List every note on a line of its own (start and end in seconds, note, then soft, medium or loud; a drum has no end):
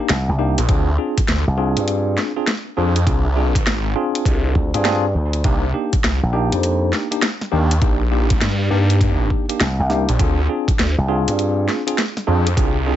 0.00 0.12 A#3 medium
0.00 0.12 D4 medium
0.00 0.12 D#4 medium
0.00 0.12 G4 medium
0.09 0.26 C2 medium
0.09 snare loud
0.09 closed hi-hat medium
0.28 0.55 C2 medium
0.39 0.59 A#3 medium
0.39 0.59 D4 medium
0.39 0.59 D#4 medium
0.39 0.59 G4 loud
0.58 0.67 A#1 loud
0.58 closed hi-hat medium
0.68 0.97 D2 medium
0.68 0.89 C4 medium
0.68 0.89 D4 medium
0.68 0.89 F4 medium
0.68 0.89 G#4 loud
0.68 kick loud
0.68 closed hi-hat medium
0.98 1.19 C4 medium
0.98 1.19 D4 medium
0.98 1.19 F4 medium
0.98 1.19 G#4 medium
1.18 kick loud
1.18 closed hi-hat medium
1.28 1.44 D2 medium
1.28 snare loud
1.28 closed hi-hat medium
1.47 1.74 C2 loud
1.58 2.32 C4 medium
1.58 2.32 D4 medium
1.58 2.32 F4 medium
1.58 2.32 G#4 loud
1.77 2.16 G2 medium
1.77 closed hi-hat medium
1.88 closed hi-hat medium
2.18 snare medium
2.36 2.50 C4 medium
2.36 2.50 D4 medium
2.36 2.50 F4 medium
2.36 2.50 G#4 medium
2.47 snare loud
2.47 closed hi-hat medium
2.77 3.05 F2 medium
2.77 2.97 C4 medium
2.77 2.97 D4 medium
2.77 2.97 F4 medium
2.77 2.97 G#4 loud
2.96 closed hi-hat medium
3.06 3.64 C2 loud
3.06 3.27 C4 medium
3.06 3.27 D4 medium
3.06 3.27 F4 medium
3.06 3.27 G#4 medium
3.06 kick loud
3.06 closed hi-hat medium
3.36 3.57 C4 medium
3.36 3.57 D4 medium
3.36 3.56 F4 medium
3.36 3.57 G#4 medium
3.55 kick loud
3.55 closed hi-hat medium
3.67 3.94 G#1 medium
3.67 snare loud
3.67 closed hi-hat medium
3.96 4.70 C4 medium
3.96 4.70 D4 medium
3.96 4.70 F4 medium
3.96 4.69 G#4 loud
4.15 closed hi-hat medium
4.25 4.53 C2 medium
4.25 kick loud
4.25 closed hi-hat medium
4.55 4.71 D2 medium
4.55 kick medium
4.74 5.13 G2 loud
4.74 4.83 C4 medium
4.74 4.83 D4 medium
4.74 4.83 F4 medium
4.74 4.83 G#4 loud
4.74 closed hi-hat medium
4.85 5.05 C4 loud
4.85 5.05 D4 medium
4.85 5.05 F4 medium
4.85 5.05 G#4 loud
4.85 snare loud
4.85 closed hi-hat medium
5.15 5.43 D2 medium
5.33 closed hi-hat medium
5.44 5.72 C2 medium
5.44 5.65 A#3 medium
5.44 5.65 D4 medium
5.44 5.65 D#4 medium
5.44 5.65 G4 medium
5.44 kick loud
5.44 closed hi-hat soft
5.74 5.94 A#3 medium
5.74 5.94 D4 medium
5.74 5.94 D#4 medium
5.74 5.94 G4 medium
5.93 kick loud
5.93 closed hi-hat medium
6.04 6.20 C2 medium
6.04 snare loud
6.04 closed hi-hat medium
6.23 6.49 A#1 loud
6.33 7.07 A#3 loud
6.33 7.07 D4 medium
6.33 7.07 D#4 medium
6.33 7.07 G4 loud
6.52 6.91 F2 medium
6.52 closed hi-hat medium
6.63 closed hi-hat medium
6.93 snare medium
7.11 7.25 A#3 medium
7.11 7.25 D4 medium
7.11 7.25 D#4 medium
7.11 7.25 G4 medium
7.11 closed hi-hat medium
7.22 snare loud
7.22 closed hi-hat soft
7.41 snare medium
7.52 7.80 D#2 loud
7.52 7.72 A#3 medium
7.52 7.72 D4 medium
7.52 7.72 D#4 medium
7.52 7.72 G4 loud
7.71 closed hi-hat medium
7.82 8.40 A#1 medium
7.82 8.02 A#3 medium
7.82 8.02 D4 medium
7.82 8.02 D#4 medium
7.82 8.02 G4 medium
7.82 kick loud
7.82 closed hi-hat soft
8.11 8.32 A#3 medium
8.11 8.32 D4 medium
8.11 8.32 D#4 medium
8.11 8.32 G4 medium
8.30 kick loud
8.30 closed hi-hat medium
8.41 8.69 G2 medium
8.41 snare loud
8.41 closed hi-hat soft
8.70 9.29 G2 loud
8.70 9.45 A#3 loud
8.70 9.45 D4 medium
8.70 9.45 D#4 medium
8.70 9.45 G4 loud
8.90 closed hi-hat medium
9.01 kick medium
9.01 closed hi-hat medium
9.30 kick medium
9.49 9.62 A#3 medium
9.49 9.62 D4 medium
9.49 9.62 D#4 medium
9.49 9.62 G4 medium
9.49 closed hi-hat medium
9.60 9.76 C2 loud
9.60 snare loud
9.60 closed hi-hat soft
9.79 10.06 C2 loud
9.90 10.10 A#3 medium
9.90 10.10 D4 medium
9.90 10.10 D#4 medium
9.90 10.10 G4 loud
9.90 snare soft
10.09 10.18 A#1 loud
10.09 closed hi-hat medium
10.19 10.47 D2 medium
10.19 10.40 C4 medium
10.19 10.40 D4 medium
10.19 10.40 F4 medium
10.19 10.40 G#4 loud
10.19 kick loud
10.19 closed hi-hat medium
10.49 10.69 C4 medium
10.49 10.69 D4 medium
10.49 10.69 F4 medium
10.49 10.69 G#4 medium
10.68 kick loud
10.68 closed hi-hat medium
10.79 10.95 D2 loud
10.79 snare loud
10.79 closed hi-hat medium
10.98 11.25 C2 loud
11.08 11.82 C4 medium
11.08 11.82 D4 medium
11.08 11.82 F4 medium
11.08 11.82 G#4 loud
11.28 11.67 G2 loud
11.28 closed hi-hat medium
11.39 closed hi-hat medium
11.69 snare medium
11.87 12.00 C4 medium
11.87 12.00 D4 medium
11.87 12.00 F4 medium
11.87 12.00 G#4 medium
11.87 closed hi-hat medium
11.98 snare loud
11.98 closed hi-hat medium
12.17 snare medium
12.27 12.55 F2 medium
12.27 12.48 C4 loud
12.27 12.48 D4 medium
12.27 12.48 F4 medium
12.27 12.48 G#4 loud
12.47 closed hi-hat medium
12.57 12.96 C2 medium
12.57 12.77 C4 medium
12.57 12.77 D4 medium
12.57 12.77 F4 medium
12.57 12.77 G#4 loud
12.57 kick loud
12.57 closed hi-hat medium
12.87 12.96 C4 medium
12.87 12.96 D4 medium
12.87 12.96 F4 medium
12.87 12.96 G#4 medium